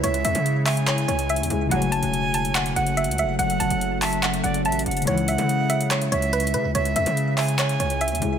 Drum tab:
HH |x-----x-----x-----x-----x-----------o-----x-----x-----x-----x-----x-----x---x---x---x-----------|x-----x-----x-----x-----x-----------x-----x-----x-----x-----x-----x-----x---x---x---x-----------|x-----x-----x-----x-----x-----------o-----x-----x-----x-----x-----x-----x---x---x---x--x--x--x--|x-----x-----x-----x-----x-----------x-----x-----x-----x-----x-----x-----x---x---x---x-----------|
CP |------------------------------------x-----------x-----------------------------------------------|------------------------------------------------x-----------------------------------------------|------------------------------------x-----------x-----------------------------------------------|------------------------------------------------x-----------------------------------------------|

HH |x-----x-----x-----x-----x-----------o-----x-----x-----x-----x-----x-----x---x---x---x-----------|
CP |------------------------------------x-----------x-----------------------------------------------|